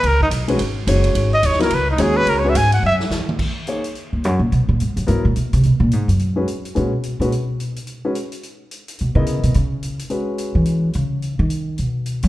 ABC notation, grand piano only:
X:1
M:4/4
L:1/8
Q:"Swing" 1/4=214
K:G#m
V:1 name="Grand piano"
z3 [G,CFB] z2 [G,CFc]2- | [G,CFc] z2 [F,B,EA] z2 [G,CFc]2- | [G,CFc] [G,CFB] z6 | z2 [A,DGc] z4 z |
z4 [F,B,EA] z3 | z4 z [G,CFB] z2 | [G,CFB] z2 [G,CFB] z4 | z [G,CFB] z6 |
z [B,EAd]3 z4 | [G,CFB]4- [G,CFB] z3 | z8 |]